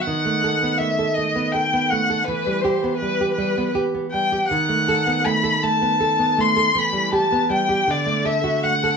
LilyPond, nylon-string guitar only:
\new Staff \with { instrumentName = "Nylon-string guitar" } { \time 6/8 \key e \minor \tempo 4. = 53 dis16 a16 a'16 b16 a16 a'16 a16 b16 a'16 b16 a16 a'16 | e16 g16 g'16 b16 g16 g'16 g16 b16 g'16 b16 g16 g'16 | dis16 a16 a'16 b16 a16 a'16 a16 b16 a'16 b16 a16 a'16 | e16 g16 g'16 b16 g16 g'16 d16 a16 a'16 fis'16 a16 a'16 | }